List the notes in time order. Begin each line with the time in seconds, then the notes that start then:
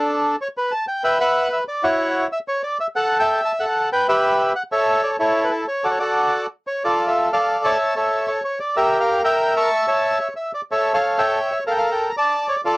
Already playing: D4 A4
0.41 C#5
0.57 B4
0.71 A5
0.88 G5
1.04 B4 E5 G5
1.20 B4 F#5
1.53 E5
1.68 D5
1.83 E4 F#4 C#5
2.32 E5
2.48 C#5
2.63 D5
2.80 E5
2.96 A4 F#5
3.19 E5 G5
3.45 A5
3.60 A4 F#5
3.93 B4 G5
4.09 G4 B4 E5
4.56 F#5
4.72 A4 C#5 E5
5.04 D5
5.20 E4 A4 C#5
5.44 B4
5.51 A4
5.68 C#5
5.84 F#4 A4 D5
5.91 C#5
5.99 F#4 A4 D5
6.67 C#5
6.84 F4 A4 D5
7.07 A4 E5
7.33 A4 D5 F5
7.64 C#5 E5 A5
7.96 A4 C#5 E5
8.28 C#5
8.44 C#5
8.60 D5
8.76 G4 A#4 E5
9.00 A#4 F5
9.24 A#4 E5 G5
9.56 E5 A5 C#6
9.88 C#5 E5 A5
10.36 E5
10.54 D5
10.72 A4 C#5 E5
10.94 A4 C#5 F5
11.18 C#5 E5 G5
11.52 E5
11.67 A4 A#4 F5
11.71 G5
11.78 F5
11.92 G5
12.09 A#5
12.17 D5 A5
12.49 C#5
12.65 F4 A4 D5